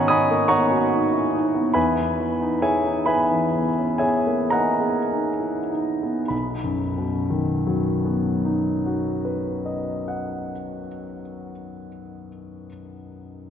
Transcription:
0.00 1.71 G#2 soft
0.00 1.78 D#3 soft
0.00 0.11 B3 soft
0.00 0.10 C#4 soft
0.00 0.93 D#4 soft
0.00 0.71 F#4 soft
0.00 0.50 C#5 medium
0.00 0.10 D#5 soft
0.00 0.49 F#5 medium
0.00 0.09 G#5 medium
0.00 0.49 A#5 medium
0.00 0.10 B5 medium
0.00 0.48 C#6 medium
0.00 0.08 D#6 medium
0.08 0.42 B3 soft
0.08 0.47 D#5 medium
0.08 0.46 G#5 medium
0.08 0.47 B5 medium
0.08 0.49 D#6 medium
0.31 0.50 A#3 soft
0.48 0.82 B3 soft
0.48 1.71 C#5 medium
0.48 1.70 F#5 medium
0.48 1.70 A#5 medium
0.48 1.74 C#6 medium
0.71 1.03 F#4 soft
0.93 1.25 D#4 soft
1.12 1.33 E4 soft
1.35 1.68 D#4 soft
1.54 1.76 B3 soft
1.74 6.27 E2 soft
1.74 2.59 B4 soft
1.74 2.59 E5 soft
1.74 2.59 G#5 medium
1.74 2.62 B5 medium
2.00 2.33 B3 soft
2.20 2.55 E3 soft
2.41 2.77 D#4 soft
2.62 3.05 G#4 soft
2.62 3.05 C#5 soft
2.62 3.05 E5 soft
2.62 3.06 G#5 medium
2.86 3.22 D#4 soft
3.06 3.45 B3 soft
3.06 3.98 B4 soft
3.06 3.98 E5 soft
3.06 3.97 G#5 soft
3.06 4.01 B5 medium
3.32 3.69 E3 soft
3.55 3.93 B3 soft
3.78 4.03 C#4 soft
3.98 4.42 B3 soft
3.98 4.49 G#4 soft
3.98 4.49 C#5 soft
3.98 4.48 E5 soft
3.98 4.52 G#5 medium
4.27 4.53 A#3 soft
4.50 4.97 B3 soft
4.50 6.26 A#4 soft
4.50 6.26 D#5 soft
4.50 6.26 F#5 soft
4.50 6.29 A#5 medium
4.80 5.27 G#4 soft
5.12 5.59 D#4 soft
5.39 5.71 E4 soft
5.72 6.20 D#4 soft
6.03 6.31 B3 soft
6.28 10.52 B1 soft
6.28 10.50 B5 soft
6.64 10.86 F#2 soft
6.98 11.20 B2 soft
7.30 11.52 D#3 soft
7.67 11.89 F#3 soft
8.05 12.27 B3 soft
8.45 12.66 D#4 soft
8.86 12.68 F#4 soft
9.25 12.68 B4 soft
9.66 12.67 D#5 soft
10.08 12.68 F#5 soft

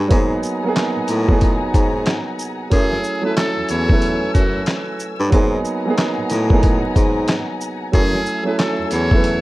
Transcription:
0.00 0.08 F#3 medium
0.00 0.13 A3 medium
0.00 0.13 C#4 medium
0.00 0.13 E4 medium
0.00 0.13 A4 medium
0.00 0.13 B4 medium
0.08 0.37 G#2 loud
0.08 0.52 F#3 loud
0.08 0.53 A#3 medium
0.08 0.54 B3 medium
0.08 0.54 D#4 medium
0.08 2.69 F#5 medium
0.08 2.69 G#5 medium
0.08 2.69 A#5 medium
0.08 kick loud
0.08 closed hi-hat medium
0.13 0.55 G#4 loud
0.43 shaker medium
0.64 1.16 F#3 medium
0.64 1.16 A#3 medium
0.64 1.17 B3 medium
0.64 1.18 D#4 medium
0.68 1.18 G#4 loud
0.76 snare loud
0.76 clap medium
0.76 closed hi-hat medium
0.96 1.01 A2 soft
1.08 1.61 A2 loud
1.08 closed hi-hat medium
1.08 shaker medium
1.28 2.35 F#3 medium
1.28 2.36 B3 medium
1.28 2.37 D#4 medium
1.28 2.35 A#4 medium
1.28 kick loud
1.32 2.37 G#4 loud
1.41 kick medium
1.41 closed hi-hat medium
1.74 2.16 G#2 medium
1.74 kick medium
1.74 closed hi-hat medium
1.74 shaker medium
2.06 snare loud
2.06 clap medium
2.06 closed hi-hat medium
2.39 shaker medium
2.70 2.98 F#2 loud
2.70 3.14 F#3 medium
2.70 3.14 A3 medium
2.70 5.30 A3 medium
2.70 3.15 C#4 medium
2.70 3.16 E4 medium
2.70 3.22 G#4 loud
2.70 5.30 G#5 medium
2.70 5.30 E6 medium
2.70 kick loud
2.70 closed hi-hat medium
2.75 3.16 G#4 medium
2.93 snare soft
3.04 shaker medium
3.21 3.75 F#3 medium
3.21 3.76 A3 medium
3.21 3.76 C#4 medium
3.21 3.77 E4 medium
3.21 3.36 B4 medium
3.26 3.77 A4 medium
3.37 3.66 A4 medium
3.37 snare loud
3.37 clap medium
3.37 closed hi-hat medium
3.57 3.62 E2 soft
3.69 4.22 E2 medium
3.69 4.31 C#5 loud
3.69 closed hi-hat medium
3.69 shaker medium
3.88 4.96 F#3 medium
3.88 4.96 A3 medium
3.88 4.97 C#4 medium
3.88 4.97 E4 medium
3.88 kick loud
3.93 4.98 B4 medium
4.02 closed hi-hat medium
4.34 4.61 F#2 medium
4.34 4.64 F#4 medium
4.34 kick medium
4.34 closed hi-hat medium
4.34 shaker medium
4.66 snare loud
4.66 clap medium
4.66 closed hi-hat medium
5.00 shaker medium
5.20 5.30 G2 loud
5.30 5.59 G#2 loud
5.30 5.74 F#3 loud
5.30 5.75 A#3 medium
5.30 5.75 B3 medium
5.30 5.76 D#4 medium
5.30 7.91 F#5 medium
5.30 7.91 G#5 medium
5.30 7.91 A#5 medium
5.30 kick loud
5.30 closed hi-hat medium
5.35 5.77 G#4 loud
5.65 shaker medium
5.85 6.37 F#3 medium
5.85 6.38 A#3 medium
5.85 6.39 B3 medium
5.85 6.39 D#4 medium
5.90 6.40 G#4 loud
5.98 snare loud
5.98 clap medium
5.98 closed hi-hat medium
6.18 6.23 A2 soft
6.30 6.83 A2 loud
6.30 snare soft
6.30 closed hi-hat medium
6.30 shaker medium
6.49 7.56 F#3 medium
6.49 7.57 B3 medium
6.49 7.58 D#4 medium
6.49 7.57 A#4 medium
6.49 kick loud
6.54 7.59 G#4 loud
6.63 kick medium
6.63 closed hi-hat medium
6.96 7.38 G#2 medium
6.96 kick medium
6.96 closed hi-hat medium
6.96 shaker medium
7.28 snare loud
7.28 clap medium
7.28 closed hi-hat medium
7.61 shaker medium
7.92 8.20 F#2 loud
7.92 8.36 F#3 medium
7.92 8.36 A3 medium
7.92 9.41 A3 medium
7.92 8.37 C#4 medium
7.92 8.37 E4 medium
7.92 8.43 G#4 loud
7.92 9.41 G#5 medium
7.92 9.41 E6 medium
7.92 kick loud
7.92 closed hi-hat medium
7.96 8.38 G#4 medium
8.15 snare soft
8.26 shaker medium
8.43 8.97 F#3 medium
8.43 8.97 A3 medium
8.43 8.98 C#4 medium
8.43 8.99 E4 medium
8.43 8.58 B4 medium
8.48 8.99 A4 medium
8.58 8.88 A4 medium
8.58 snare loud
8.58 clap medium
8.58 closed hi-hat medium
8.79 8.84 E2 soft
8.91 9.41 E2 medium
8.91 9.41 C#5 loud
8.91 closed hi-hat medium
8.91 shaker medium
9.11 9.41 F#3 medium
9.11 9.41 A3 medium
9.11 9.41 C#4 medium
9.11 9.41 E4 medium
9.11 kick loud
9.15 9.41 B4 medium
9.24 closed hi-hat medium

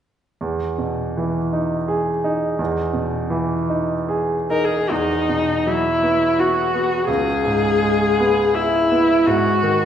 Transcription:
0.41 2.55 E2 soft
0.78 1.38 B2 soft
1.17 1.75 E3 soft
1.53 2.11 D#4 soft
1.88 2.45 G#4 soft
2.24 2.80 D#4 soft
2.59 4.86 E2 soft
2.93 3.53 B2 soft
3.30 3.92 E3 soft
3.69 4.33 D#4 soft
4.09 4.75 G#4 soft
4.50 4.91 D#4 soft
4.50 4.66 A#4 soft
4.65 4.92 G#4 soft
4.91 7.04 E2 soft
4.91 5.68 D#4 medium
5.29 5.89 B2 soft
5.67 6.25 F#3 soft
5.67 6.41 E4 medium
6.03 6.59 B3 soft
6.39 7.08 F#4 medium
6.39 6.95 F#4 soft
6.74 7.09 B3 soft
7.08 9.22 C#2 soft
7.08 8.56 G#4 medium
7.45 8.04 G#2 soft
7.82 8.41 G#3 soft
8.20 8.77 B3 soft
8.55 9.27 E4 medium
8.55 9.12 E4 soft
8.91 9.26 B3 soft
9.26 9.85 G#2 soft
9.26 9.85 F#4 medium
9.63 9.85 D#3 soft

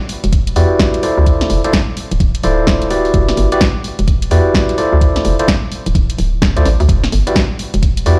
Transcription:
0.09 open hi-hat loud
0.24 0.52 E1 medium
0.24 closed hi-hat medium
0.33 kick loud
0.33 closed hi-hat medium
0.47 closed hi-hat medium
0.56 0.67 E2 medium
0.56 1.01 E4 medium
0.56 1.01 F#4 medium
0.56 1.01 G4 medium
0.56 1.01 B4 medium
0.56 1.01 D5 loud
0.56 open hi-hat loud
0.79 kick loud
0.79 snare loud
0.94 closed hi-hat medium
1.03 1.61 E4 medium
1.03 1.61 F4 medium
1.03 1.61 A4 medium
1.03 1.61 C5 medium
1.03 1.61 D5 medium
1.03 open hi-hat loud
1.18 1.46 D2 medium
1.26 kick loud
1.26 closed hi-hat medium
1.41 snare medium
1.41 closed hi-hat soft
1.50 1.61 F1 medium
1.50 open hi-hat loud
1.64 1.75 E4 medium
1.64 1.75 F4 medium
1.64 1.75 A4 medium
1.64 1.75 C5 medium
1.64 1.75 D5 medium
1.64 closed hi-hat medium
1.73 kick loud
1.73 snare loud
1.97 open hi-hat loud
2.11 2.18 D1 medium
2.11 closed hi-hat medium
2.20 2.31 D1 medium
2.20 kick loud
2.20 closed hi-hat medium
2.35 closed hi-hat medium
2.43 3.10 D1 medium
2.43 2.88 E4 medium
2.43 2.88 F4 medium
2.43 2.88 A4 medium
2.43 2.88 C5 medium
2.43 2.88 D5 loud
2.43 open hi-hat loud
2.67 kick loud
2.67 snare loud
2.82 closed hi-hat soft
2.90 3.49 E4 medium
2.90 3.49 F#4 medium
2.90 3.49 G4 medium
2.90 3.49 B4 medium
2.90 3.49 D5 medium
2.90 open hi-hat loud
3.05 open hi-hat medium
3.14 3.33 E1 loud
3.14 kick loud
3.14 closed hi-hat medium
3.29 snare medium
3.29 closed hi-hat soft
3.37 3.48 G1 medium
3.37 open hi-hat loud
3.52 3.63 E4 medium
3.52 3.63 F#4 medium
3.52 3.62 G4 medium
3.52 3.63 B4 medium
3.52 3.62 D5 medium
3.52 closed hi-hat medium
3.61 kick loud
3.61 snare loud
3.84 open hi-hat loud
3.99 4.27 E1 medium
3.99 closed hi-hat medium
4.08 kick loud
4.08 closed hi-hat medium
4.22 closed hi-hat medium
4.31 4.42 E2 medium
4.31 4.76 E4 medium
4.31 4.76 F#4 medium
4.31 4.76 G4 medium
4.31 4.76 B4 medium
4.31 4.76 D5 loud
4.31 open hi-hat loud
4.54 kick loud
4.54 snare loud
4.69 closed hi-hat soft
4.78 5.36 E4 medium
4.78 5.36 F4 medium
4.78 5.36 A4 medium
4.78 5.36 C5 medium
4.78 5.36 D5 medium
4.78 open hi-hat loud
4.93 5.21 D2 medium
5.01 kick loud
5.01 closed hi-hat medium
5.16 snare medium
5.16 closed hi-hat soft
5.25 5.36 F1 medium
5.25 open hi-hat loud
5.39 5.50 E4 medium
5.39 5.50 F4 medium
5.39 5.50 A4 medium
5.39 5.50 C5 medium
5.39 5.50 D5 medium
5.39 closed hi-hat medium
5.48 kick loud
5.48 snare loud
5.72 open hi-hat loud
5.86 5.93 D1 medium
5.86 closed hi-hat medium
5.95 6.06 D1 medium
5.95 kick loud
5.95 closed hi-hat medium
6.10 closed hi-hat medium
6.18 6.56 D1 medium
6.18 open hi-hat loud
6.42 kick loud
6.42 snare loud
6.57 6.63 D2 medium
6.57 6.67 E4 medium
6.57 6.67 F4 medium
6.57 6.67 A4 medium
6.57 6.67 C5 medium
6.57 6.67 D5 loud
6.57 closed hi-hat medium
6.65 6.76 A1 medium
6.65 snare soft
6.65 open hi-hat loud
6.80 6.87 D2 loud
6.80 open hi-hat medium
6.89 7.08 E1 loud
6.89 kick loud
6.89 closed hi-hat medium
7.04 snare medium
7.04 closed hi-hat soft
7.12 7.23 G1 medium
7.12 open hi-hat loud
7.27 7.37 E4 medium
7.27 7.37 F#4 medium
7.27 7.37 G4 medium
7.27 7.37 B4 medium
7.27 7.37 D5 medium
7.27 closed hi-hat medium
7.36 kick loud
7.36 snare loud
7.59 open hi-hat loud
7.74 8.02 E1 medium
7.74 closed hi-hat medium
7.83 kick loud
7.83 closed hi-hat medium
7.97 closed hi-hat medium
8.06 8.17 E2 medium
8.06 8.19 E4 medium
8.06 8.19 F#4 medium
8.06 8.19 G4 medium
8.06 8.19 B4 medium
8.06 8.19 D5 loud
8.06 open hi-hat loud

